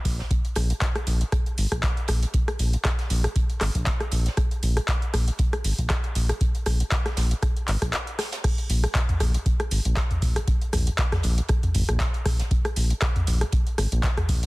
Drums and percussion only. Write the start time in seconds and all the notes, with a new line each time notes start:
0.05 kick, closed hi-hat, open hi-hat
0.19 snare
0.31 kick, closed hi-hat
0.45 closed hi-hat
0.56 cross-stick, closed hi-hat, open hi-hat
0.70 closed hi-hat
0.81 kick, snare, clap, closed hi-hat
0.95 cross-stick, closed hi-hat
1.07 closed hi-hat, open hi-hat
1.21 closed hi-hat
1.32 kick, cross-stick, closed hi-hat
1.46 closed hi-hat
1.58 closed hi-hat, open hi-hat
1.72 kick, cross-stick, closed hi-hat
1.83 kick, snare, clap, closed hi-hat
1.97 closed hi-hat
2.08 cross-stick, closed hi-hat, open hi-hat
2.23 closed hi-hat
2.34 kick, closed hi-hat
2.48 cross-stick, closed hi-hat
2.59 closed hi-hat, open hi-hat
2.73 closed hi-hat
2.85 kick, cross-stick, snare, clap, closed hi-hat
2.99 snare, closed hi-hat
3.10 closed hi-hat, open hi-hat
3.24 cross-stick, closed hi-hat
3.36 kick, closed hi-hat
3.50 closed hi-hat
3.61 cross-stick, clap, closed hi-hat, open hi-hat
3.75 kick, closed hi-hat
3.87 kick, snare, clap, closed hi-hat
4.00 cross-stick, closed hi-hat
4.12 closed hi-hat, open hi-hat
4.26 snare, closed hi-hat
4.37 kick, cross-stick, closed hi-hat
4.51 closed hi-hat
4.63 closed hi-hat, open hi-hat
4.77 cross-stick, closed hi-hat
4.88 kick, snare, clap, closed hi-hat
5.02 closed hi-hat
5.14 cross-stick, closed hi-hat, open hi-hat
5.28 closed hi-hat
5.39 kick, closed hi-hat
5.53 cross-stick, closed hi-hat
5.64 closed hi-hat, open hi-hat
5.79 kick, closed hi-hat
5.89 kick, cross-stick, snare, clap, closed hi-hat
6.04 closed hi-hat
6.15 closed hi-hat, open hi-hat
6.29 cross-stick, closed hi-hat
6.41 kick, closed hi-hat
6.55 closed hi-hat
6.66 cross-stick, closed hi-hat, open hi-hat
6.80 closed hi-hat
6.91 kick, snare, clap, closed hi-hat
7.05 cross-stick, snare, closed hi-hat
7.17 snare, closed hi-hat, open hi-hat
7.31 closed hi-hat
7.42 kick, cross-stick, closed hi-hat
7.57 closed hi-hat
7.68 clap, closed hi-hat, open hi-hat
7.82 kick, cross-stick, closed hi-hat
7.93 snare, clap, closed hi-hat
8.07 closed hi-hat
8.19 cross-stick, snare, closed hi-hat, open hi-hat
8.32 snare, closed hi-hat
8.44 kick, cross-stick, closed hi-hat, crash
8.58 closed hi-hat
8.70 closed hi-hat, open hi-hat
8.84 cross-stick, closed hi-hat
8.95 kick, snare, clap, closed hi-hat
9.09 closed hi-hat, mid tom
9.20 cross-stick, closed hi-hat, open hi-hat
9.34 closed hi-hat
9.46 kick, closed hi-hat
9.60 cross-stick, closed hi-hat
9.71 closed hi-hat, open hi-hat
9.85 closed hi-hat
9.97 kick, cross-stick, snare, clap, closed hi-hat
10.11 closed hi-hat, mid tom
10.22 kick, closed hi-hat, open hi-hat
10.36 cross-stick, closed hi-hat
10.48 kick, closed hi-hat
10.62 closed hi-hat
10.73 cross-stick, closed hi-hat, mid tom, open hi-hat
10.87 closed hi-hat
10.98 kick, snare, clap, closed hi-hat
11.12 cross-stick, snare, closed hi-hat, mid tom
11.23 closed hi-hat, open hi-hat
11.38 closed hi-hat
11.49 kick, cross-stick, closed hi-hat
11.63 closed hi-hat, mid tom
11.74 closed hi-hat, mid tom, open hi-hat
11.89 cross-stick, closed hi-hat
12.00 kick, snare, clap, closed hi-hat
12.14 closed hi-hat
12.26 kick, cross-stick, closed hi-hat, open hi-hat
12.39 snare, closed hi-hat
12.51 kick, closed hi-hat
12.65 cross-stick, closed hi-hat
12.76 closed hi-hat, open hi-hat
12.90 closed hi-hat
13.01 kick, cross-stick, snare, clap, closed hi-hat
13.16 closed hi-hat, mid tom
13.27 closed hi-hat, open hi-hat
13.41 cross-stick, closed hi-hat
13.52 kick, closed hi-hat
13.67 closed hi-hat
13.78 cross-stick, closed hi-hat, open hi-hat
13.92 closed hi-hat
14.03 kick, snare, clap, closed hi-hat
14.17 cross-stick, closed hi-hat, mid tom
14.29 kick, closed hi-hat, open hi-hat
14.43 closed hi-hat